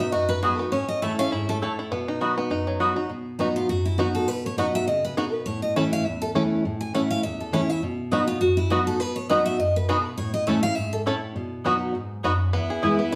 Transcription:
Already playing: B2 B3
0.00 D#4 F#4 E5
0.12 F#2 F#4 D#5
0.29 B4
0.43 F#3 B3 D#4 F#4 G#4 D#5 B5
0.59 B3 D#4 F#4 B4
0.72 A2 C#4 C#5
0.89 D#5
1.02 E3 A3 C#4 E4 A4 C#5 E5 A5
1.19 C#4 E4 F5
1.32 G#2 E4 E5
1.49 A3 A4
1.62 A2 A3 E4 A4 C#5 A5
1.79 E4
1.92 B2 B3
2.08 D#4
2.21 F#3 B3 D#4 F#4 D#5 B5
2.37 B3 D#4 F#4
2.50 F#2 D#4
2.67 F#3
2.79 F#3 B3 D#4 F#4 D#5 B5
2.96 D#4 F#4
3.10 B2
3.39 F#3 B3 D#4 F#4
3.56 F4
3.69 F#2 F#4
3.85 E4
3.98 F#3 B3 D#4 F#4
4.15 A4
4.28 B2 B4
4.46 C#5
4.57 F#3 B3 D#4 F#4 D#5
4.75 E5
4.88 C#3 D#5
5.05 B4
5.17 B2 B3 D#4 F#4 G#4
5.33 B4
5.46 A2 C#5
5.62 D#5
5.76 E3 A3 C#4 E4 A4 E5
5.93 F5
6.05 E2 E5
6.22 A4
6.35 E3 A3 C#4 E4 A4
6.65 A2
6.81 G#5
6.93 E3 A3 C#4 E4 A4 F#5
7.11 F5
7.23 E2 E5
7.40 A4
7.52 E3 A3 C#4 E4 A4 C#5
7.69 C#4 E4 E5
7.83 B2
8.11 F#3 B3 D#4 F#4 D#5 B5
8.27 D#4 F4 F#4
8.41 F#2 F#4
8.57 E4
8.70 F#3 B3 D#4 F#4 D#5 B5
8.87 A4
9.00 B2 B4
9.16 C#5
9.29 F#3 B3 D#4 F#4 D#5 B5
9.46 E5
9.59 F#2 D#5
9.76 B4
9.88 B2 B3 D#4 F#4 G#4 D#5 B5
10.05 B4
10.18 A2 C#5
10.34 D#5
10.47 E3 A3 C#4 E4 A4 C#5 E5 A5
10.63 C#4 E4 F5
10.76 G#2 E5
10.93 A4
11.06 A2 A3 C#4 E4 A4 C#5 A5
11.36 B2
11.64 F#3 B3 D#4 F#4 D#5 B5
11.95 G#2
12.23 F#2 B3 D#4 F#4 D#5 B5
12.53 E2 B3 E4
12.70 G#4
12.82 E3 G#3 B3 E4 B4 G#5
12.99 B3 E4

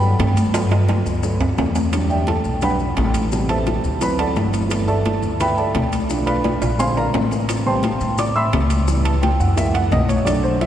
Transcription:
Already playing: G2
0.01 F#3 A3 B3, high conga, low conga, maracas
0.19 G2, high bongo, low bongo, high conga, high timbale, low timbale, maracas
0.36 high conga, high timbale, maracas
0.53 F#3 A3 B3, high bongo, high conga, high timbale, maracas
0.71 high bongo, high conga, high timbale, maracas
0.88 high bongo, high conga, high timbale, maracas
1.06 D2, high bongo, high conga, maracas
1.23 F#3 A3 B3, high bongo, high conga, maracas
1.41 D2, high bongo, high conga, low timbale, maracas
1.57 E2, high bongo, low bongo, high conga, low timbale, maracas
1.75 high conga, low timbale, maracas
1.92 F#3 G3 D4, high bongo, high conga, high timbale, maracas
2.10 G4 D5 E5 G5, high conga, maracas
2.27 A4 A5, high bongo, high conga, high timbale, low timbale, maracas
2.44 B1, maracas
2.61 F#3 G3 D4 B4 F#5 G5 B5, high bongo, high conga, low conga, high timbale, maracas
2.79 high conga, low conga, maracas
2.97 A1, high bongo, low bongo, high conga, high timbale, low timbale, maracas
3.14 high conga, high timbale, maracas
3.31 B2 C3 G3, high bongo, high conga, maracas
3.49 A4 C5 E5 A5, high bongo, high conga, high timbale, maracas
3.66 high bongo, high conga, high timbale, low timbale, maracas
3.84 D2, high bongo, high conga, maracas
4.01 E3 F#3 C4 B4 B5, high bongo, high conga, high timbale, maracas
4.19 A4 D5 F#5 A5, high bongo, high conga, high timbale, maracas
4.36 G1, high bongo, low bongo, high conga, low timbale, maracas
4.53 high conga, high timbale, maracas
4.69 E3 A3 B3, high bongo, high conga, high timbale, maracas
4.88 A4 D5 E5 A5, high conga, maracas
5.05 high bongo, high conga, high timbale, low timbale, maracas
5.23 D2, maracas
5.40 B4 E5 G5 B5, high bongo, high conga, low conga, high timbale, maracas
5.57 A4 D5 E5 A5, high conga, maracas
5.75 B1, high bongo, low bongo, high conga, high timbale, low timbale, maracas
5.92 high conga, high timbale, maracas
6.09 F3 A3 D4, high bongo, high conga, maracas
6.26 B4 D5 F5 B5, high bongo, high conga, high timbale, maracas
6.44 high bongo, high conga, high timbale, maracas
6.62 A#1, high bongo, high conga, high timbale, maracas
6.78 D3 G#3 C4 C5 F5 G#5 C6, high bongo, high conga, low timbale, maracas
6.96 A#4 D5 F5 A#5, high bongo, high conga, low timbale, maracas
7.14 A1, high bongo, low bongo, high conga, low timbale, maracas
7.31 high conga, low timbale, maracas
7.49 high bongo, high timbale, maracas
7.66 C3 G3 B3 C5 G5 A5 C6, high conga, maracas
7.83 high bongo, high conga, high timbale, low timbale, maracas
8.00 A2, maracas
8.18 D5 D6, high bongo, high conga, low conga, high timbale, maracas
8.35 E5 B5 C6 E6, high conga, maracas
8.53 C#2, high bongo, low bongo, high conga, high timbale, low timbale, maracas
8.70 high conga, high timbale, maracas
8.88 E3 G3 B3, high bongo, high conga, maracas
9.05 A5, high bongo, high conga, high timbale, maracas
9.22 G5, high bongo, high conga, high timbale, low timbale, maracas
9.40 F#2 F#5, high bongo, high conga, maracas
9.56 E3 G#3 A#3 E5, high bongo, high conga, high timbale, maracas
9.74 F#5, high bongo, high conga, high timbale, maracas
9.92 B1 D#5, high bongo, low bongo, high conga, low timbale, maracas
10.08 C#5, high conga, high timbale, maracas
10.25 F#3 A3 D4 D5, high bongo, high conga, high timbale, maracas
10.44 C5, high conga, maracas
10.61 E5, high bongo, high conga, high timbale, low timbale, maracas

